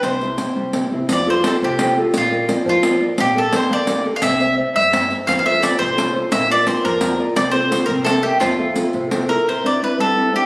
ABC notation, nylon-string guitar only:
X:1
M:6/8
L:1/8
Q:3/8=115
K:C
V:1 name="Nylon-string guitar"
C, [CEG] [CEG] G, [CEG] [CEG] | [K:F] F, [FGA] [FGA] C, [FGA] [FGA] | B, [FBd] [FBd] F, [FBd] [FBd] | B, [GAB] [GAB] B, [GAB] [GAB] |
C [cde] [cde] G, [cde] [cde] | F, [FAc] [FAc] C, [FAc] [FAc] | B, [FBd] [FBd] F, [FBd] [FBd] | C [FAc] [FAc] C [Bce] [Bce] |
F, [FAe] [FAe] C, [EFA] [EFA] | [K:C] C, [CDE] [CDE] G, [CDE] [CDE] |]